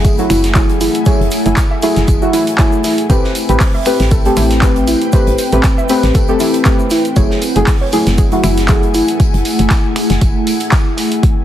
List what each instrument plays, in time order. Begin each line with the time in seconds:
Already playing: fm bass F#1, synth stab F#3 A3 E4 G#4, ambient pad A3 E4 G#5 B5, analog synth pad A3 E4 G#4 F#5
0.05 synth pluck G#4, kick, closed hi-hat, tambourine, shaker
0.18 synth stab F#3 A3 E4 F#4, synth pluck F#4, closed hi-hat, shaker
0.30 fm bass F#1, synth pluck E4, finger snap, open hi-hat, tambourine, shaker
0.44 snare, closed hi-hat, shaker
0.55 synth stab F#3 A3 E4 G#4, kick, snare, clap, closed hi-hat, tambourine, shaker
0.69 closed hi-hat, shaker
0.80 synth pluck E4, open hi-hat, tambourine, shaker
0.95 closed hi-hat, shaker
1.06 synth stab F#3 A3 E4 G#4, synth pluck C#5, kick, closed hi-hat, tambourine, shaker
1.20 fm bass F#1, closed hi-hat
1.31 open hi-hat, tambourine, shaker
1.45 fm bass F#1, synth stab F#3 A3 E4 G#4, closed hi-hat, shaker
1.57 kick, snare, clap, closed hi-hat, tambourine, shaker
1.71 synth pluck E5
1.82 synth stab F#3 A3 E4 G#4, open hi-hat, tambourine, shaker
1.96 fm bass F#1, snare, closed hi-hat, shaker
2.08 fm bass F#1, synth pluck G#4, kick, closed hi-hat, tambourine, shaker
2.22 synth stab F#3 A3 E4 F#4, synth pluck F#4, shaker
2.33 synth pluck E4, open hi-hat, tambourine, shaker
2.47 closed hi-hat, shaker
2.58 synth stab F#3 A3 E4 G#4, kick, snare, clap, closed hi-hat, tambourine, shaker
2.72 shaker
2.84 synth pluck E4, snare, open hi-hat, tambourine, shaker
2.98 closed hi-hat, shaker
3.10 fm bass A1, synth stab A3 C4 G4 B4, ambient pad C4, analog synth pad C4 B4 G5, synth pluck C5, kick, closed hi-hat, tambourine, shaker
3.24 snare
3.35 open hi-hat, tambourine, shaker
3.44 ambient pad G5
3.49 fm bass A1, synth stab A3 C4 G4 B4, closed hi-hat, shaker
3.60 kick, snare, clap, closed hi-hat, open hi-hat, shaker
3.74 synth pluck E5
3.82 synth stab A3 C4 G4 B4, ambient pad B4, finger snap, open hi-hat, tambourine, shaker
4.00 fm bass A1, snare, closed hi-hat, shaker
4.11 synth pluck A4, kick, closed hi-hat, tambourine, shaker
4.25 synth stab A3 C4 G4 A4, synth pluck G4, closed hi-hat, shaker
4.36 fm bass A1, synth pluck E4, finger snap, open hi-hat, tambourine, shaker
4.50 snare, closed hi-hat, shaker
4.62 synth stab A3 C4 G4 B4, kick, snare, clap, closed hi-hat, tambourine, shaker
4.76 closed hi-hat, shaker
4.87 synth pluck E4, open hi-hat, tambourine, shaker
5.02 closed hi-hat, shaker
5.12 synth stab A3 C4 G4 B4, synth pluck C5, kick, closed hi-hat, tambourine, shaker
5.27 fm bass A1, closed hi-hat, shaker
5.38 open hi-hat, tambourine, shaker
5.52 fm bass A1, synth stab A3 C4 G4 B4, closed hi-hat, shaker
5.63 kick, snare, clap, closed hi-hat, tambourine, shaker
5.78 synth pluck E5, shaker
5.89 synth stab A3 C4 G4 B4, open hi-hat, tambourine, shaker
6.03 fm bass A1, snare, closed hi-hat, shaker
6.15 fm bass A1, synth pluck A4, kick, closed hi-hat, tambourine, shaker
6.28 synth stab A3 C4 G4 A4, synth pluck G4, shaker
6.40 synth pluck E4, open hi-hat, tambourine, shaker
6.54 closed hi-hat, shaker
6.65 synth stab A3 C4 G4 B4, kick, snare, clap, closed hi-hat, tambourine, shaker
6.79 shaker
6.90 synth pluck E4, snare, open hi-hat, tambourine, shaker
7.05 closed hi-hat, shaker
7.16 fm bass F#1, synth stab F#3 A3 E4 G#4, analog synth pad A3 E4 G#4 F#5, ambient pad E4, synth pluck C#5, kick, closed hi-hat, tambourine, shaker
7.30 snare
7.41 open hi-hat, tambourine, shaker
7.56 fm bass F#1, synth stab F#3 A3 E4 G#4, closed hi-hat, shaker
7.67 kick, snare, clap, closed hi-hat, open hi-hat, shaker
7.76 ambient pad G#5
7.81 synth pluck C#5
7.86 ambient pad A3
7.92 synth stab F#3 A3 E4 G#4, open hi-hat, tambourine, shaker
8.07 fm bass F#1, snare, closed hi-hat, shaker
8.18 synth pluck G#4, kick, closed hi-hat, tambourine, shaker
8.32 synth stab F#3 A3 E4 F#4, synth pluck F#4, closed hi-hat, shaker
8.44 fm bass F#1, synth pluck E4, finger snap, open hi-hat, tambourine, shaker
8.57 snare, closed hi-hat, shaker
8.68 synth stab F#3 A3 E4 G#4, kick, snare, clap, closed hi-hat, tambourine, shaker
8.83 closed hi-hat, shaker
8.94 synth pluck E4, open hi-hat, tambourine, shaker
9.08 closed hi-hat, shaker
9.20 kick, closed hi-hat, tambourine
9.34 fm bass F#1, closed hi-hat
9.45 open hi-hat, tambourine
9.59 fm bass F#1, closed hi-hat
9.70 kick, snare, clap, closed hi-hat, tambourine
9.96 finger snap, open hi-hat, tambourine
10.10 fm bass F#1, snare, closed hi-hat
10.21 fm bass F#1, kick, closed hi-hat, tambourine
10.47 open hi-hat, tambourine
10.60 closed hi-hat
10.72 kick, snare, clap, closed hi-hat, tambourine
10.97 snare, open hi-hat, tambourine
11.12 closed hi-hat
11.23 analog synth pad C4 B4 G5, kick, closed hi-hat